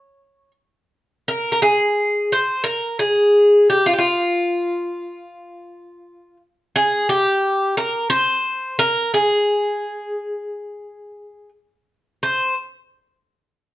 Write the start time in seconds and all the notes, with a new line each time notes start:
Already playing: C#5
1.28 A#4
1.52 A#4
1.62 G#4
2.32 C5
2.64 A#4
2.99 G#4
3.70 G4
3.86 F4
3.93 G4
3.99 F4
6.76 G#4
7.09 G4
7.77 A#4
8.10 C5
8.79 A#4
9.14 G#4
12.23 C5